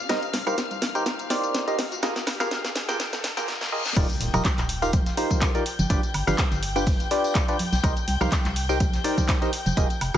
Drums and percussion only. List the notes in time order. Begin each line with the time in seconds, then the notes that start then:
0.09 snare, closed hi-hat, tambourine, high woodblock
0.23 closed hi-hat, tambourine
0.34 snare, open hi-hat
0.47 closed hi-hat, tambourine, high woodblock
0.58 snare, closed hi-hat, tambourine
0.71 closed hi-hat, tambourine
0.82 snare, open hi-hat
0.95 closed hi-hat, tambourine
1.06 snare, closed hi-hat, tambourine
1.19 closed hi-hat, tambourine
1.30 snare, open hi-hat
1.44 closed hi-hat, tambourine
1.54 snare, closed hi-hat, tambourine
1.68 closed hi-hat, tambourine
1.79 snare, open hi-hat
1.92 closed hi-hat, tambourine
2.03 snare, closed hi-hat, tambourine, high woodblock
2.16 snare, closed hi-hat, tambourine
2.27 snare, open hi-hat, high woodblock
2.40 snare, closed hi-hat, tambourine, high woodblock
2.51 snare, closed hi-hat, tambourine
2.65 snare, closed hi-hat, tambourine
2.76 snare, open hi-hat
2.89 snare, closed hi-hat, tambourine
3.00 snare, closed hi-hat, tambourine
3.13 snare, closed hi-hat, tambourine
3.24 snare, open hi-hat
3.37 snare, closed hi-hat, tambourine
3.48 snare
3.61 snare
3.85 snare
3.96 kick, closed hi-hat, crash, tambourine, high woodblock
4.09 closed hi-hat, tambourine
4.21 closed hi-hat, open hi-hat
4.33 closed hi-hat, tambourine, high conga, high woodblock
4.45 kick, snare, clap, closed hi-hat, tambourine
4.57 snare, clap, closed hi-hat, tambourine
4.69 closed hi-hat, open hi-hat
4.82 closed hi-hat, tambourine
4.93 kick, closed hi-hat, tambourine, high conga
5.06 snare, closed hi-hat, tambourine
5.17 closed hi-hat, open hi-hat
5.31 kick, closed hi-hat, tambourine, high conga
5.42 kick, snare, clap, closed hi-hat, tambourine
5.54 closed hi-hat, tambourine
5.66 closed hi-hat, open hi-hat
5.79 closed hi-hat, tambourine, high conga
5.90 kick, closed hi-hat, tambourine
6.03 closed hi-hat, tambourine
6.14 closed hi-hat, open hi-hat, high woodblock
6.28 closed hi-hat, tambourine, high conga, high woodblock
6.38 kick, snare, clap, closed hi-hat, tambourine
6.51 snare, closed hi-hat, tambourine
6.63 closed hi-hat, open hi-hat
6.76 closed hi-hat, tambourine
6.86 kick, closed hi-hat, open hi-hat, tambourine
7.00 closed hi-hat, tambourine
7.11 snare, closed hi-hat, open hi-hat
7.24 closed hi-hat, tambourine
7.34 kick, snare, clap, closed hi-hat, tambourine
7.35 tambourine
7.48 closed hi-hat, tambourine
7.59 closed hi-hat, open hi-hat, high conga
7.73 snare, closed hi-hat, tambourine
7.84 kick, closed hi-hat, tambourine, high woodblock
7.96 closed hi-hat, tambourine
8.08 closed hi-hat, open hi-hat
8.21 closed hi-hat, tambourine, high conga, high woodblock
8.32 kick, snare, clap, closed hi-hat, tambourine
8.45 snare, clap, closed hi-hat, tambourine
8.56 closed hi-hat, open hi-hat
8.69 closed hi-hat, tambourine
8.80 kick, closed hi-hat, tambourine, high conga
8.93 snare, closed hi-hat, tambourine
9.04 closed hi-hat, open hi-hat
9.17 kick, closed hi-hat, tambourine, high conga
9.29 kick, snare, clap, closed hi-hat, tambourine
9.42 closed hi-hat, tambourine
9.53 closed hi-hat, open hi-hat
9.66 closed hi-hat, tambourine, high conga
9.76 kick, closed hi-hat, tambourine
9.89 closed hi-hat, tambourine
10.01 closed hi-hat, open hi-hat, high woodblock
10.14 closed hi-hat, tambourine, high woodblock